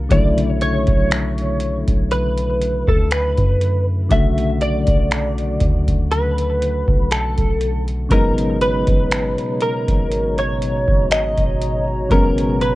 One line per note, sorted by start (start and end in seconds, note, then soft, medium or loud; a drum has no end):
0.09 0.85 B1 loud
0.09 4.08 C#3 medium
0.09 4.06 D3 medium
0.09 4.06 F#3 medium
0.09 4.07 A3 medium
0.09 0.50 D5 medium
0.09 kick loud
0.09 closed hi-hat medium
0.13 4.08 E4 medium
0.38 closed hi-hat medium
0.50 0.61 C#5 medium
0.61 2.11 C#5 medium
0.61 closed hi-hat medium
0.87 1.84 B1 loud
0.87 kick medium
0.87 closed hi-hat soft
1.11 finger snap loud
1.11 closed hi-hat medium
1.38 closed hi-hat soft
1.60 closed hi-hat medium
1.88 2.84 B1 loud
1.88 kick medium
1.88 closed hi-hat medium
2.11 2.90 B4 medium
2.11 closed hi-hat medium
2.37 closed hi-hat soft
2.62 closed hi-hat medium
2.88 3.36 D2 medium
2.88 3.12 A4 medium
2.88 kick medium
3.11 3.84 B4 medium
3.11 finger snap loud
3.11 closed hi-hat medium
3.37 4.08 F#2 loud
3.37 kick medium
3.37 closed hi-hat soft
3.61 closed hi-hat medium
4.09 4.85 B1 loud
4.09 8.08 C#3 medium
4.09 8.06 D3 medium
4.09 8.07 F#3 medium
4.09 8.07 A3 medium
4.09 4.61 E5 medium
4.09 kick loud
4.09 closed hi-hat medium
4.14 8.08 F#4 medium
4.38 closed hi-hat medium
4.61 6.11 D5 medium
4.61 closed hi-hat medium
4.87 5.58 B1 medium
4.87 kick medium
4.87 closed hi-hat soft
5.11 finger snap loud
5.11 closed hi-hat medium
5.38 closed hi-hat soft
5.60 6.84 D2 loud
5.60 kick medium
5.60 closed hi-hat medium
5.88 kick medium
5.88 closed hi-hat medium
6.11 7.11 B4 medium
6.11 closed hi-hat medium
6.38 closed hi-hat soft
6.62 closed hi-hat medium
6.88 7.36 B1 medium
6.88 kick medium
7.11 7.84 A4 medium
7.11 finger snap loud
7.11 closed hi-hat medium
7.37 8.08 B1 loud
7.37 kick medium
7.37 closed hi-hat soft
7.61 closed hi-hat medium
7.88 closed hi-hat soft
8.09 8.85 G#1 loud
8.09 12.75 B2 medium
8.09 12.06 C#3 medium
8.09 12.07 F#3 medium
8.09 12.07 G#3 medium
8.09 12.08 B3 medium
8.09 12.75 F#4 medium
8.09 8.58 A#4 medium
8.09 12.75 C#5 medium
8.09 12.75 A#5 medium
8.09 kick loud
8.09 closed hi-hat medium
8.13 12.08 D#4 medium
8.38 closed hi-hat medium
8.61 9.61 B4 medium
8.61 closed hi-hat medium
8.87 9.36 G#1 medium
8.87 kick medium
8.87 closed hi-hat soft
9.11 finger snap loud
9.11 closed hi-hat medium
9.38 closed hi-hat soft
9.60 10.38 A#4 medium
9.60 closed hi-hat medium
9.88 10.84 G#1 loud
9.88 kick medium
9.88 closed hi-hat medium
10.11 closed hi-hat medium
10.38 11.07 C#5 medium
10.38 closed hi-hat soft
10.62 closed hi-hat medium
10.88 11.36 G#1 loud
10.88 kick medium
11.11 11.84 D#5 medium
11.11 finger snap loud
11.11 closed hi-hat medium
11.38 12.08 G#1 loud
11.38 kick medium
11.38 closed hi-hat soft
11.62 closed hi-hat medium
12.09 12.75 G#1 loud
12.09 12.75 C#3 medium
12.09 12.75 F#3 medium
12.09 12.75 G#3 medium
12.09 12.75 B3 medium
12.09 12.61 A#4 medium
12.09 kick loud
12.09 closed hi-hat medium
12.13 12.75 C#4 medium
12.38 closed hi-hat medium
12.61 12.75 B4 medium
12.61 closed hi-hat medium